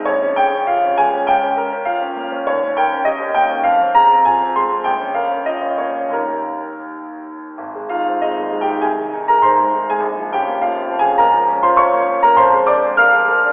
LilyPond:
\new Staff \with { instrumentName = "Grand piano" } { \time 2/4 \key bes \dorian \tempo 4 = 100 << { des''8 g''8 f''8 aes''8 | g''4 f''4 | des''8 g''8 ees''8 g''8 | f''8 bes''8 aes''8 c'''8 |
g''8 f''8 ees''8 des''8 | bes'4. r8 | r8 <f' f''>8 \tuplet 3/2 { <ees' ees''>4 <g' g''>8 } | <aes' aes''>8. <bes' bes''>16 <c'' c'''>8. <aes' aes''>16 |
r8 <g' g''>8 \tuplet 3/2 { <f' f''>4 <aes' aes''>8 } | <bes' bes''>8. <c'' c'''>16 <des'' des'''>8. <bes' bes''>16 | \key bes \mixolydian <c'' c'''>8 <d'' d'''>8 <f'' f'''>4 | } \\ { bes,,16 des'16 aes'16 des'16 f'16 des'16 aes16 des'16 | des,16 des'16 bes'16 des'16 f'16 des'16 bes16 des'16 | ees,16 des'16 bes'16 des'16 g'16 des'16 bes16 des'16 | f,16 c'16 aes'16 c'16 f'16 c'16 aes16 c'16 |
bes,,16 des'16 bes'16 des'16 f'16 des'16 bes16 des'16 | <ees, bes ees' g'>2 | aes,,16 aes16 ees'16 c'16 aes16 ees,16 aes16 ees'16 | c,16 ees16 ees'16 aes16 ees'16 aes16 ees'16 aes16 |
bes,,16 f16 des'16 bes16 f16 f,16 f16 des'16 | des,16 f16 des'16 f'16 des'16 bes16 des'16 bes16 | f,16 aes16 d'16 aes'16 bes'16 aes'16 bes'16 d'16 | } >> }